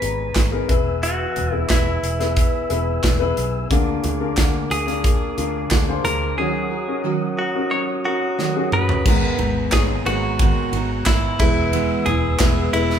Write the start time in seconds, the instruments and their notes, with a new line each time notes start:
Already playing: upright piano G#2 D#4 G#4 A#4 C#5, clean electric guitar B4, tonewheel organ G#5 A#5
0.00 fingered electric bass G#1, upright piano B3 D#4 G#4 A#5, closed hi-hat
0.35 fingered electric bass G#1, kick, snare, clap, closed hi-hat
0.52 upright piano B3 D#4 G#4 A#4
0.68 fingered electric bass E1, upright piano E3 B3 E4 G#4 B4, tonewheel organ B4 E6, kick, closed hi-hat
1.03 clean electric guitar F#4, closed hi-hat
1.36 fingered electric bass E1, closed hi-hat, floor tom
1.52 upright piano B3 E4 G#4 B4, clean electric guitar E4
1.69 fingered electric bass E1, clean electric guitar E4, kick, snare, clap, closed hi-hat
2.03 fingered electric bass E1, closed hi-hat
2.19 upright piano B3 E4 G#4 B4, snare, closed hi-hat
2.36 kick, closed hi-hat
2.70 fingered electric bass E1, upright piano B3 E4 G#4 B4, closed hi-hat
3.03 fingered electric bass E1, kick, snare, clap, closed hi-hat
3.20 upright piano B3 E4 G#4 B4
3.37 fingered electric bass B1, closed hi-hat
3.70 fingered electric bass D2, steel-string acoustic guitar D3 A#3 D4 F4 G#4, upright piano D3 D4 F4 G#4 A#4, tonewheel organ A#4 G#5 D6, kick, closed hi-hat
4.03 fingered electric bass D2, steel-string acoustic guitar D4 F4 G#4, closed hi-hat, floor tom
4.20 upright piano D4 F4 G#4 A#4
4.37 fingered electric bass D2, steel-string acoustic guitar D3 A#3 D4 F4 G#4, kick, snare, clap, closed hi-hat
4.70 fingered electric bass D2, steel-string acoustic guitar D4 F4 G#4, clean electric guitar G#4, closed hi-hat
4.87 upright piano D4 F4 G#4 A#4, closed hi-hat
5.03 steel-string acoustic guitar A#3 D4 F4 G#4, kick, closed hi-hat
5.36 fingered electric bass D2, upright piano D4 F4 G#4 A#4, steel-string acoustic guitar D4 F4 G#4, closed hi-hat
5.70 fingered electric bass D2, steel-string acoustic guitar D3 A#3 D4 F4 G#4, kick, snare, clap, closed hi-hat
5.87 upright piano D4 F4 G#4 C5
6.04 fingered electric bass D2, steel-string acoustic guitar D4 F4 G#4, clean electric guitar A#4, closed hi-hat, floor tom
6.37 steel-string acoustic guitar D#3 F#3 C#4 F#4 A#4, upright piano D#3 C#4 D#4 F#4 A#4, clean electric guitar G#4, tonewheel organ C#5 F#5 D#6
6.70 steel-string acoustic guitar C#4 F#4 A#4
6.88 upright piano C#4 D#4 F#4 A#4
7.04 steel-string acoustic guitar D#3 F#3 C#4 F#4 A#4
7.37 steel-string acoustic guitar C#4 F#4 A#4, clean electric guitar F#4
7.55 upright piano C#4 D#4 F#4 A#4
7.70 steel-string acoustic guitar F#3 C#4 F#4 A#4, clean electric guitar C#5
8.04 upright piano C#4 D#4 F#4 A#4, steel-string acoustic guitar C#4 F#4 A#4, clean electric guitar F#4
8.38 steel-string acoustic guitar D#3 F#3 C#4 F#4 A#4, snare
8.55 upright piano C#4 D#4 F#4 G#4
8.72 steel-string acoustic guitar C#4 F#4 A#4, clean electric guitar B4, mid tom
8.89 floor tom
9.05 fingered electric bass G#1, steel-string acoustic guitar G#2 D#3 G#3 B3 D#4 A#4, upright piano G#2 G#3 B3 D#4 G#4 A#5, tonewheel organ G#5 A#5, kick, crash
9.38 fingered electric bass G#1, steel-string acoustic guitar G#3 B3 D#4 A#4, floor tom, ride
9.72 fingered electric bass G#1, steel-string acoustic guitar G#3 B3 D#4 A#4, upright piano A#3 B3 D#4 G#4 C#5, clean electric guitar G#4, kick, snare, clap, ride
10.05 fingered electric bass G#1, steel-string acoustic guitar G#3 B3 D#4 A#4, upright piano B3 D#4 G#4 A#4 C#5, clean electric guitar F#4, ride
10.39 steel-string acoustic guitar G#2 D#3 G#3 B3 D#4 A#4, kick, ride
10.73 fingered electric bass G#1, steel-string acoustic guitar G#3 B3 D#4 A#4, ride
11.06 fingered electric bass G#1, steel-string acoustic guitar G#3 B3 D#4 A#4, clean electric guitar E4, kick, snare, clap, ride
11.39 fingered electric bass E1, upright piano E3 G#3 B3 E4 G#4 B4, steel-string acoustic guitar B3 E4 G#4, clean electric guitar E4, tonewheel organ B4 E6, kick, floor tom, crash
11.72 steel-string acoustic guitar E3 G#3 B3 E4 G#4, ride
12.06 fingered electric bass E1, steel-string acoustic guitar B3 E4 G#4, clean electric guitar G#4, floor tom, ride
12.39 fingered electric bass E1, steel-string acoustic guitar G#3 B3 E4 G#4, upright piano G#3 B3 E4 G#4 B4, kick, snare, clap, ride
12.73 fingered electric bass E1, upright piano G#3 B3 E4 G#4 B4, steel-string acoustic guitar B3 E4 G#4, clean electric guitar E4, ride
12.90 snare